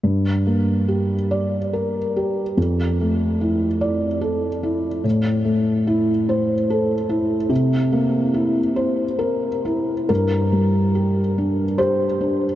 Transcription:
\new Staff \with { instrumentName = "Felt piano" } { \time 3/4 \key g \dorian \tempo 4 = 72 << { r2. | r2. | r2. | r2. |
bes'2 c''4 | } \\ { g,8 bes8 g'8 d''8 bes'8 g'8 | f,8 a8 e'8 d''8 a'8 e'8 | a,8 a8 e'8 c''8 a'8 e'8 | c8 bes8 e'8 c''8 bes'8 e'8 |
g,8 g8 g'8 d'8 g'8 d'8 | } >> }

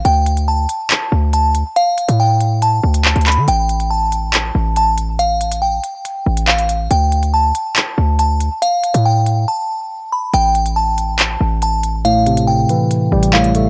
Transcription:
<<
  \new Staff \with { instrumentName = "Synth bell" } { \time 4/4 \key d \dorian \tempo 4 = 140 g''4 a''2 a''8 r8 | f''4 g''4 a''4. b''8 | g''4 a''2 a''8 r8 | f''4 g''2 f''4 |
g''4 a''2 a''8 r8 | f''4 g''4 a''4. b''8 | g''4 a''2 a''8 r8 | f''4 g''2 f''4 | }
  \new Staff \with { instrumentName = "Tine electric piano" } { \clef bass \time 4/4 \key d \dorian r1 | r1 | r1 | r1 |
r1 | r1 | r1 | a,8 c4 e4 g8 a,8 a8 | }
  \new Staff \with { instrumentName = "808-style bass" } { \clef bass \time 4/4 \key d \dorian d,4. r4 d,4~ d,16 r16 | r8. a,4.~ a,16 d,8. d,8 d16 | a,,2~ a,,8 a,,4.~ | a,,4. r4 a,,4. |
d,4. r4 d,4~ d,16 r16 | r8. a,4~ a,16 r2 | a,,2~ a,,8 a,,4.~ | a,,4. r4 a,,4. | }
  \new DrumStaff \with { instrumentName = "Drums" } \drummode { \time 4/4 hh8 hh16 hh16 r8 hh8 <hc hh>4 hh8 hh8 | hh8 hh16 hh16 r8 hh8 hh8. hh16 hc16 hh32 hh32 <hc hh>32 hh16. | hh8 hh16 hh16 r8 hh8 <hc hh>4 hh8 hh8 | hh8 hh16 hh16 r8 hh8 hh8. hh16 hc16 hh16 hh8 |
hh8 hh16 hh16 r8 hh8 <hc hh>4 hh8 hh8 | hh8 hh16 hh16 r8 hh8 r4 r4 | hh8 hh16 hh16 r8 hh8 <hc hh>4 hh8 hh8 | hh8 hh16 hh16 r8 hh8 hh8. hh16 hc16 hh16 hh8 | }
>>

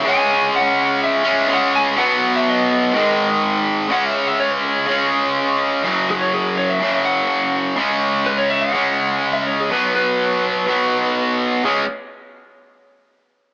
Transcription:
<<
  \new Staff \with { instrumentName = "Lead electric guitar" } { \time 4/4 \key cis \minor \tempo 4 = 124 gis''4 fis''4 e''4 fis''8 gis''8 | fis''8. e''16 dis''2~ dis''8 r8 | fis''16 e''16 cis''16 e''16 cis''16 b'16 gis'4 r4. | r8 gis'16 cis''16 gis'8 cis''16 e''8. fis''4.~ |
fis''8 r8 b'16 cis''16 e''16 fis''4. e''16 cis''16 gis'16 | b'8 b'2. r8 | r1 | }
  \new Staff \with { instrumentName = "Distorted electric guitar" } { \clef bass \time 4/4 \key cis \minor <cis gis cis'>2~ <cis gis cis'>8 <cis gis cis'>8 <cis gis cis'>4 | <b, fis b>2 <gis, dis gis>2 | <cis gis cis'>2 <cis gis cis'>2 | <fis, cis fis>2 <fis, cis fis>2 |
<cis gis cis'>2 <cis gis cis'>2 | <b, fis b>2 <b, fis b>2 | <cis gis cis'>8 r2. r8 | }
>>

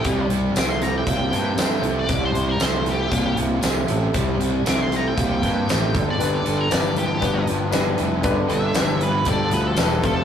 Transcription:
<<
  \new Staff \with { instrumentName = "Lead electric guitar" } { \time 4/4 \key c \major \tempo 4 = 117 g'8 r8 d'''16 c'''16 bes''16 g''2 d''16~ | d''16 c''8 bes'16 c''8 g'4 r4. | r4 d'''16 c'''16 bes''16 g''2 d''16~ | d''16 d''8 bes'16 d''8 g'4 r4. |
r8 e''4 b'8 d''8 b'16 a'8. a'8 | }
  \new Staff \with { instrumentName = "Grand piano" } { \time 4/4 \key c \major r1 | r1 | r1 | <d' g' b'>4 <d' g' b'>4 <d' g' b'>4 <d' g' b'>4 |
<d' g' b'>4 <d' g' b'>4 <d' g' a'>4 <d' g' b'>8 <f' a' c''>8 | }
  \new Staff \with { instrumentName = "Overdriven electric guitar" } { \clef bass \time 4/4 \key c \major <c g>8 <c g>8 <c a>8 <c a>8 <c bes>8 <c bes>8 <c a>8 <c a>8 | <c g>8 <c g>8 <c a>8 <c a>8 <c bes>8 <c bes>8 <c a>8 <c a>8 | <c g>8 <c g>8 <c a>8 <c a>8 <c bes>8 <c bes>8 <c a>8 <g, d>8 | <g, d>8 <g, d>8 <g, e>8 <g, e>8 <g, f>8 <g, f>8 <g, e>8 <g, e>8 |
<g, d>8 <g, d>8 <g, e>8 <g, e>8 <g, f>8 <g, f>8 <g, e>8 <f, c>8 | }
  \new Staff \with { instrumentName = "Overdriven electric guitar" } { \clef bass \time 4/4 \key c \major <c g>8 <c g>8 <c a>8 <c a>8 <c bes>8 <c bes>8 <c a>8 <c a>8 | <c g>8 <c g>8 <c a>8 <c a>8 <c bes>8 <c bes>8 <c a>8 <c a>8 | <c g>8 <c g>8 <c a>8 <c a>8 <c bes>8 <c bes>8 <c a>8 <g, d>8 | <g, d>8 <g, d>8 <g, e>8 <g, e>8 <g, f>8 <g, f>8 <g, e>8 <g, e>8 |
<g, d>8 <g, d>8 <g, e>8 <g, e>8 <g, f>8 <g, f>8 <g, e>8 <f, c>8 | }
  \new Staff \with { instrumentName = "Fingered electric bass" } { \clef bass \time 4/4 \key c \major c,8 c,8 c,4 c,8 g,8 g,8 c,8 | c,8 c,8 c,4 c,8 c,8 c,8 a,,8 | c,8 c,8 c,4 c,8 g,8 a,,8 g,,8 | g,,8 g,,8 g,,4 g,,8 g,,8 g,,8 f,,8 |
g,,8 g,,8 g,,4 g,,8 d,8 e,,8 f,,8 | }
  \new DrumStaff \with { instrumentName = "Drums" } \drummode { \time 4/4 <hh bd>8 hh8 <hh sn tamb>8 hh8 <hh bd>8 <hh sn>8 <hh sn tamb>8 hh8 | <hh bd>8 hh8 <hh sn tamb>8 hh8 <hh bd>8 hh8 <hh sn tamb>8 hh8 | <hh bd>8 hh8 <hh sn tamb>8 hh8 <hh bd>8 <hh bd sn>8 <hh sn tamb>8 <hh bd>8 | hh8 hh8 <hh sn tamb>8 hh8 <hh bd>8 hh8 <hh sn tamb>8 hh8 |
<hh bd>8 hh8 <hh sn tamb>8 hh8 <hh bd>8 hh8 <hh sn tamb>8 <hh bd>8 | }
>>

